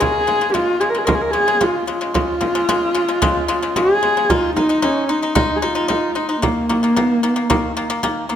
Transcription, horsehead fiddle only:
0.00 0.55 G#4 loud
0.53 0.82 F4 loud
0.80 0.91 G#4 medium
0.89 0.99 A#4 medium
0.98 1.07 G#4 medium
1.05 1.16 A#4 medium
1.14 1.23 G#4 medium
1.21 1.32 A#4 medium
1.31 1.65 G#4 loud
1.63 1.89 F4 medium
1.90 3.79 F4 loud
3.77 4.32 G#4 loud
4.31 4.56 F4 loud
4.57 4.86 D#4 medium
4.84 5.12 C#4 medium
5.11 5.58 D#4 medium
5.56 5.65 G#4 medium
5.64 6.18 F4 medium
6.17 6.41 D#4 medium
6.42 6.98 A#3 medium
6.98 7.13 B3 medium
7.13 7.29 A#3 medium
7.29 7.44 B3 medium
7.44 7.99 A#3 medium
8.30 8.36 A#3 medium

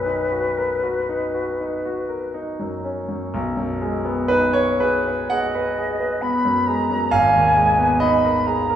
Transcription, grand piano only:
0.00 3.29 B1 soft
0.00 2.60 F#2 soft
0.00 0.22 C#4 soft
0.06 0.48 D#4 soft
0.32 0.74 F#4 soft
0.57 0.99 A#4 soft
0.83 1.25 F#4 soft
1.09 1.50 D#4 soft
1.34 1.75 F#4 soft
1.60 2.00 D#4 soft
1.85 2.25 F#4 soft
2.09 2.49 A#4 soft
2.34 2.74 D#4 soft
2.60 3.00 F#2 soft
2.84 3.24 C#4 soft
3.09 3.33 F#2 soft
3.34 7.07 B1 medium
3.57 3.95 F#2 soft
3.81 4.19 G#3 soft
4.05 4.44 B3 soft
4.28 4.70 D#4 soft
4.28 4.53 B4 medium
4.53 4.79 B4 soft
4.53 4.79 C#5 medium
4.80 5.21 G#4 medium
4.80 5.06 B4 medium
5.07 5.45 B4 medium
5.30 5.67 G#4 medium
5.30 7.11 F#5 loud
5.55 5.90 B4 medium
5.78 6.13 G#4 soft
6.00 6.35 B4 soft
6.22 6.57 B3 soft
6.45 6.80 F#2 soft
6.67 7.03 G#3 soft
6.90 7.11 F#2 soft
7.11 8.76 G#1 medium
7.11 8.00 F5 loud
7.34 7.69 D#2 soft
7.56 7.91 G#3 soft
7.78 8.14 B3 soft
8.00 8.37 D#4 medium
8.00 8.76 D#5 medium
8.25 8.60 A#4 medium
8.47 8.76 G#4 soft
8.70 8.76 A#4 medium

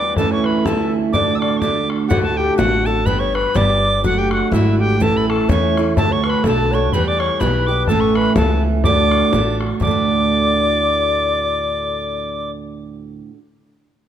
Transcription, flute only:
0.00 0.18 D5 medium
0.17 0.33 A4 medium
0.31 0.47 C#5 medium
0.45 0.66 B4 medium
0.64 0.93 A4 medium
1.14 1.40 D5 medium
1.41 1.60 D5 medium
1.61 1.88 D5 medium
2.08 2.35 F#4 medium
2.37 2.59 G4 medium
2.58 2.88 F#4 medium
2.87 3.07 A4 medium
3.06 3.22 B4 medium
3.21 3.36 C#5 medium
3.35 3.57 B4 medium
3.56 4.03 D5 loud
4.04 4.20 F#4 medium
4.18 4.34 G4 medium
4.32 4.54 F#4 medium
4.53 4.81 E4 medium
4.80 5.00 G4 medium
5.01 5.26 A4 medium
5.29 5.50 A4 medium
5.49 5.96 C#5 medium
5.97 6.12 A4 medium
6.11 6.24 C#5 medium
6.25 6.45 B4 medium
6.44 6.73 A4 medium
6.71 6.92 C#5 medium
6.94 7.06 B4 medium
7.07 7.22 D5 medium
7.20 7.43 C#5 medium
7.41 7.91 B4 medium
7.89 8.18 A4 medium
8.17 8.36 B4 medium
8.37 8.62 A4 medium
8.86 9.57 D5 medium
9.83 12.51 D5 medium

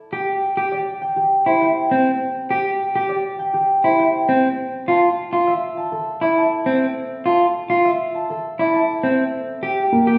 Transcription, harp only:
0.00 2.24 E5 medium
0.12 1.00 G5 soft
0.72 3.08 D5 medium
1.01 1.60 G5 medium
1.16 3.52 G4 medium
1.46 3.83 C5 soft
1.61 2.48 G5 medium
2.50 3.38 G5 medium
3.09 4.60 D5 medium
3.39 3.98 G5 medium
3.54 4.60 G4 medium
3.84 7.74 C5 medium
3.99 4.61 G5 medium
4.88 5.76 A5 medium
5.47 6.65 E5 medium
5.77 6.36 A5 medium
5.92 8.29 A4 medium
6.22 8.58 D5 medium
6.37 7.25 A5 medium
6.66 7.84 E5 medium
7.26 8.13 A5 medium
7.85 9.03 E5 medium
8.15 8.72 A5 medium
8.30 9.36 A4 medium
8.59 9.36 D5 medium
8.73 9.36 A5 medium
9.04 10.18 E5 medium
9.63 10.18 G5 medium

